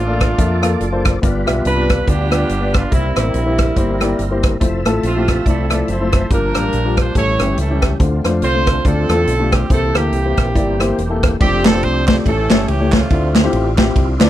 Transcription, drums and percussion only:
0.20 kick, cross-stick, closed hi-hat
0.38 kick, closed hi-hat
0.63 cross-stick, closed hi-hat
0.81 closed hi-hat
1.05 kick, cross-stick, closed hi-hat
1.23 kick, closed hi-hat
1.47 cross-stick, closed hi-hat
1.65 closed hi-hat
1.89 kick, cross-stick, closed hi-hat
2.07 kick, closed hi-hat
2.31 cross-stick, closed hi-hat
2.49 closed hi-hat
2.74 kick, cross-stick, closed hi-hat
2.92 kick, closed hi-hat
3.16 cross-stick, closed hi-hat
3.34 closed hi-hat
3.58 kick, cross-stick, closed hi-hat
3.76 kick, closed hi-hat
4.01 cross-stick, closed hi-hat
4.19 closed hi-hat
4.43 kick, cross-stick, closed hi-hat
4.61 kick, closed hi-hat
4.86 cross-stick, closed hi-hat
5.03 closed hi-hat
5.28 kick, cross-stick, closed hi-hat
5.46 kick, closed hi-hat
5.70 cross-stick, closed hi-hat
5.88 closed hi-hat
6.12 kick, cross-stick, closed hi-hat
6.30 kick, closed hi-hat
6.55 cross-stick, closed hi-hat
6.73 closed hi-hat
6.97 kick, cross-stick, closed hi-hat
7.15 kick, closed hi-hat
7.39 cross-stick, closed hi-hat
7.58 closed hi-hat
7.82 kick, cross-stick, closed hi-hat
8.00 kick, closed hi-hat
8.25 cross-stick, closed hi-hat
8.42 closed hi-hat
8.66 kick, cross-stick, closed hi-hat
8.85 kick, closed hi-hat
9.09 cross-stick, closed hi-hat
9.27 closed hi-hat
9.52 kick, cross-stick, closed hi-hat
9.70 kick, closed hi-hat
9.95 cross-stick, closed hi-hat
10.12 closed hi-hat
10.37 kick, cross-stick, closed hi-hat
10.55 kick, closed hi-hat
10.80 cross-stick, closed hi-hat
10.98 closed hi-hat
11.23 kick, cross-stick, closed hi-hat
11.41 kick, crash
11.65 snare, clap, ride
11.83 ride
12.07 kick, snare, clap, ride
12.26 kick, ride
12.50 snare, clap, ride
12.68 ride
12.92 kick, snare, clap, ride
13.10 kick, ride
13.35 snare, clap, ride
13.53 ride
13.77 kick, snare, clap, ride
13.96 kick, ride
14.20 snare, clap, ride

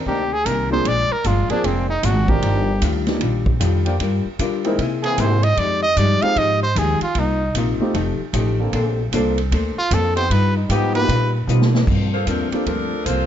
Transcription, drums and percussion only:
0.06 kick
0.46 kick, hi-hat pedal, ride
0.85 kick, ride
1.24 kick, hi-hat pedal, ride
1.50 ride
1.64 kick, ride
2.03 kick, hi-hat pedal, ride
2.28 kick
2.42 kick, ride
2.82 kick, hi-hat pedal, ride
3.07 snare, ride
3.21 kick, ride
3.46 kick
3.60 kick, hi-hat pedal, ride
3.86 ride
4.00 kick, ride
4.39 kick, hi-hat pedal, ride
4.64 ride
4.79 kick, ride
5.04 ride
5.18 kick, hi-hat pedal, ride
5.43 ride
5.57 kick, ride
5.97 kick, hi-hat pedal, ride
6.22 ride
6.36 kick, ride
6.76 kick, hi-hat pedal, ride
7.01 ride
7.15 kick, ride
7.55 kick, hi-hat pedal, ride
7.94 kick, ride
8.33 kick, hi-hat pedal, ride
8.73 kick, ride
9.12 kick, hi-hat pedal, ride
9.38 ride
9.52 kick, ride
9.91 kick, hi-hat pedal, ride
10.17 ride
10.30 kick, ride
10.69 kick, hi-hat pedal, ride
10.95 ride
11.09 kick, ride
11.48 hi-hat pedal
11.62 snare
11.75 snare
11.87 kick, crash
12.27 kick, hi-hat pedal, ride
12.52 ride
12.66 kick, ride
13.06 kick, hi-hat pedal, ride

